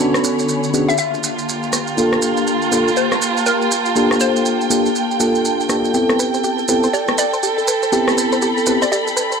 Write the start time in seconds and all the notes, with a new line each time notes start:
Already playing: D3 C#5 G#5 B5
0.00 B3 C#4 D4 F#4 A4
0.14 cross-stick, maracas
0.24 maracas
0.39 maracas
0.49 maracas
0.63 maracas
0.73 B3 C#4 D4 F#4 G#4, maracas
0.89 E5, maracas
0.98 A#3 F4 G4 E5 F5 A5, maracas
1.14 maracas
1.23 G5, maracas
1.38 A#3, maracas
1.49 maracas
1.63 maracas
1.73 cross-stick, maracas
1.87 maracas
1.97 A#3 D4 F4 G4 A4, maracas
2.13 cross-stick, maracas
2.22 maracas
2.37 maracas
2.47 maracas
2.62 maracas
2.72 A#3 D4 F4 G4 A4, maracas
2.88 maracas
2.97 C5, maracas
3.12 cross-stick, maracas
3.22 maracas
3.37 maracas
3.46 A#4, maracas
3.62 maracas
3.71 maracas
3.85 maracas
3.96 A#3 D4 F4 G4 A4, maracas
4.11 cross-stick, maracas
4.20 C5, maracas
4.36 maracas
4.45 maracas
4.61 maracas
4.70 A#3 D4 F4 G4 A4, maracas
4.86 maracas
4.95 maracas
5.11 maracas
5.20 A#3 D4 F4 G4 A4, maracas
5.35 maracas
5.45 maracas
5.60 maracas
5.69 A#3 D4 F4 G4 A4, cross-stick, maracas
5.84 maracas
5.94 B3 C4 E4 G4 A4 G5, maracas
6.09 A4, cross-stick, maracas
6.19 A4 B4, maracas
6.34 C5, maracas
6.44 G4, maracas
6.58 A4, maracas
6.68 B3 C4 E4 G4 A4 B4, maracas
6.83 C5, maracas
6.93 G4 D5, maracas
7.08 A4, cross-stick, maracas
7.18 B4 D5, maracas
7.33 C5, maracas
7.43 G4 B5, maracas
7.58 A4, maracas
7.68 B4, maracas
7.83 C5, maracas
7.92 B3 C4 E4 G4 A4, maracas
8.08 A4, cross-stick, maracas
8.17 B4, maracas
8.32 C5, maracas
8.42 G4, maracas
8.57 A4, maracas
8.66 B3 C4 E4 G4 A4 B4, maracas
8.82 C5 D5, maracas
8.92 G4 D5 B5, maracas
9.07 A4, maracas
9.16 B4, maracas
9.32 C5, maracas